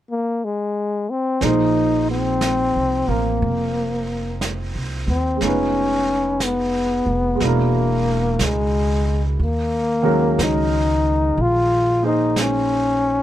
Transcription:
0.11 0.46 A#3 medium
0.44 1.11 G#3 medium
1.10 1.46 C4 medium
1.41 2.72 A#1 medium
1.41 5.41 F3 soft
1.41 3.06 A#3 soft
1.41 5.42 D#4 soft
1.41 2.09 D#4 medium
1.41 5.43 G#4 soft
1.41 brush sweep soft
1.41 snare soft
1.45 5.43 C5 soft
2.11 3.12 C4 medium
2.41 brush sweep soft
2.41 snare soft
2.41 hi-hat pedal soft
2.76 3.07 C2 soft
3.07 3.39 A1 medium
3.07 5.41 A#3 soft
3.07 4.44 A#3 medium
3.07 5.42 C4 soft
3.07 5.42 F4 soft
3.07 5.43 A#4 soft
3.41 4.71 F1 medium
3.41 brush sweep soft
4.41 brush sweep soft
4.41 snare soft
4.41 hi-hat pedal medium
4.75 5.06 C2 soft
5.08 5.39 D#2 medium
5.08 5.44 C4 medium
5.36 7.34 G#3 soft
5.40 7.02 F1 medium
5.40 7.40 B3 soft
5.40 6.45 C#4 medium
5.40 7.41 D#4 soft
5.40 brush sweep soft
5.40 snare soft
5.45 7.42 F4 soft
5.45 7.43 B4 soft
6.40 7.46 B3 medium
6.40 brush sweep soft
6.40 snare soft
6.40 hi-hat pedal soft
7.06 7.38 F1 medium
7.35 9.38 B2 soft
7.35 9.36 G#3 soft
7.40 8.36 E1 medium
7.40 9.39 D4 soft
7.40 9.41 E4 soft
7.40 brush sweep soft
7.40 snare soft
7.45 8.45 A#3 medium
7.45 9.42 A#4 soft
8.39 9.35 C#2 medium
8.39 brush sweep soft
8.39 snare soft
8.39 hi-hat pedal soft
8.44 9.24 G#3 medium
9.39 10.34 D#2 medium
9.39 brush sweep soft
9.43 10.44 A#3 medium
10.03 13.23 D#3 medium
10.03 13.23 F#3 medium
10.03 13.23 G#3 soft
10.03 13.23 C#4 medium
10.03 13.23 A#4 medium
10.38 11.33 C#2 medium
10.38 brush sweep soft
10.38 snare soft
10.38 hi-hat pedal soft
10.42 11.43 D#4 medium
11.37 13.23 A#1 medium
11.37 brush sweep soft
11.41 12.04 F4 medium
12.02 13.23 A#3 soft
12.02 13.23 D#4 soft
12.02 12.41 D#4 medium
12.02 13.23 G#4 soft
12.02 13.23 C5 soft
12.36 13.23 C#4 medium
12.36 brush sweep soft
12.36 snare soft
12.36 hi-hat pedal soft

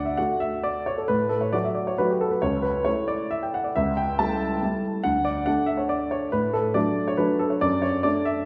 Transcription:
0.00 0.16 D2 soft
0.00 0.20 D5 medium
0.00 0.17 F#5 medium
0.05 0.17 E5 soft
0.17 1.05 A3 soft
0.17 1.06 F#4 soft
0.17 0.41 F#5 medium
0.40 0.64 E5 medium
0.64 0.87 D5 medium
0.86 0.98 C#5 medium
0.98 1.09 A4 soft
1.08 1.52 A2 soft
1.08 1.30 B4 medium
1.29 1.41 A4 medium
1.41 1.53 C#5 soft
1.53 1.95 F#3 soft
1.53 1.96 A3 soft
1.53 1.96 F#4 soft
1.53 1.64 D5 medium
1.64 1.76 E5 soft
1.75 1.87 D5 soft
1.87 1.99 C#5 medium
1.98 2.39 F#3 soft
1.98 2.40 A3 soft
1.98 2.40 F#4 soft
1.98 2.10 B4 medium
2.10 2.22 G4 soft
2.21 2.32 A4 medium
2.31 2.43 B4 soft
2.42 2.85 C#2 soft
2.42 2.64 C#5 medium
2.62 2.85 B4 medium
2.85 3.71 A3 soft
2.85 3.72 E4 soft
2.85 3.08 C#5 medium
3.08 3.31 D5 medium
3.31 3.43 E5 medium
3.43 3.54 G5 soft
3.54 3.65 F#5 medium
3.64 3.75 D5 soft
3.76 4.18 C#2 soft
3.76 3.97 E5 medium
3.97 4.19 G5 medium
4.19 4.59 G3 soft
4.19 4.59 A3 soft
4.19 4.59 E4 soft
4.19 4.84 A5 medium
4.63 5.01 G3 soft
4.63 5.01 A3 soft
4.63 5.02 E4 soft
5.04 5.45 D2 soft
5.04 5.25 F#5 medium
5.25 5.46 D5 medium
5.46 6.29 A3 soft
5.46 6.30 D4 soft
5.46 5.68 F#5 medium
5.66 5.78 E5 medium
5.77 5.89 C#5 soft
5.89 6.12 D5 medium
6.11 6.33 C#5 medium
6.32 6.74 A2 soft
6.32 6.54 B4 medium
6.53 6.75 A4 medium
6.74 7.15 F#3 soft
6.74 7.15 A3 soft
6.74 7.15 D4 soft
6.74 7.07 D5 medium
7.08 7.19 C#5 medium
7.17 7.59 F#3 soft
7.17 7.59 A3 soft
7.17 7.59 D4 soft
7.17 7.40 B4 medium
7.39 7.51 A4 medium
7.50 7.62 C#5 soft
7.61 8.03 F#2 soft
7.61 7.83 D5 medium
7.82 8.04 C#5 medium
8.03 8.45 A3 soft
8.03 8.45 D4 soft
8.03 8.26 D5 medium
8.25 8.45 E5 medium

